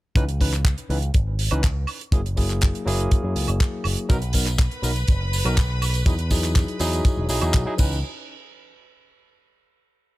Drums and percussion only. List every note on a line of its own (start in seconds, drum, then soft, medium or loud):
0.16 kick loud
0.16 closed hi-hat medium
0.29 closed hi-hat medium
0.41 kick medium
0.41 open hi-hat loud
0.53 clap soft
0.53 closed hi-hat medium
0.65 kick loud
0.65 clap loud
0.65 closed hi-hat medium
0.78 closed hi-hat medium
0.90 open hi-hat medium
1.02 closed hi-hat medium
1.14 kick loud
1.14 closed hi-hat medium
1.39 open hi-hat loud
1.51 closed hi-hat medium
1.51 high woodblock medium
1.63 kick loud
1.63 clap loud
1.63 closed hi-hat loud
1.87 open hi-hat medium
1.87 high woodblock medium
2.01 closed hi-hat medium
2.12 kick loud
2.12 closed hi-hat medium
2.26 closed hi-hat medium
2.37 kick medium
2.37 open hi-hat loud
2.50 clap soft
2.50 closed hi-hat medium
2.61 kick loud
2.61 clap loud
2.61 closed hi-hat medium
2.75 closed hi-hat medium
2.88 open hi-hat loud
3.00 closed hi-hat medium
3.11 kick loud
3.11 closed hi-hat medium
3.36 open hi-hat loud
3.48 closed hi-hat medium
3.48 high woodblock medium
3.60 kick loud
3.60 clap loud
3.60 closed hi-hat medium
3.84 open hi-hat loud
3.84 high woodblock medium
3.97 closed hi-hat medium
4.10 kick loud
4.10 closed hi-hat medium
4.10 tambourine soft
4.22 closed hi-hat medium
4.33 kick medium
4.33 open hi-hat loud
4.33 tambourine medium
4.46 clap soft
4.46 closed hi-hat medium
4.46 tambourine medium
4.59 kick loud
4.59 clap loud
4.59 closed hi-hat medium
4.59 tambourine soft
4.71 closed hi-hat medium
4.83 open hi-hat loud
4.83 tambourine medium
4.96 closed hi-hat medium
4.96 tambourine medium
5.07 kick loud
5.07 closed hi-hat medium
5.07 tambourine soft
5.33 open hi-hat loud
5.33 tambourine loud
5.45 closed hi-hat medium
5.45 tambourine medium
5.45 high woodblock medium
5.57 kick loud
5.57 clap loud
5.57 closed hi-hat medium
5.57 tambourine soft
5.82 open hi-hat loud
5.82 tambourine medium
5.82 high woodblock medium
5.94 closed hi-hat medium
5.94 tambourine medium
6.06 kick loud
6.06 closed hi-hat medium
6.06 tambourine soft
6.19 closed hi-hat medium
6.31 kick medium
6.31 open hi-hat loud
6.31 tambourine medium
6.44 clap soft
6.44 closed hi-hat medium
6.44 tambourine medium
6.55 kick loud
6.55 clap loud
6.55 closed hi-hat medium
6.55 tambourine soft
6.68 closed hi-hat soft
6.79 open hi-hat loud
6.79 tambourine medium
6.93 closed hi-hat medium
6.93 tambourine medium
7.05 kick loud
7.05 closed hi-hat medium
7.05 tambourine soft
7.29 open hi-hat loud
7.29 tambourine loud
7.41 closed hi-hat medium
7.41 tambourine medium
7.41 high woodblock medium
7.54 kick loud
7.54 clap loud
7.54 closed hi-hat medium
7.54 tambourine soft
7.78 kick loud
7.78 crash medium
7.78 tambourine loud
7.92 tambourine medium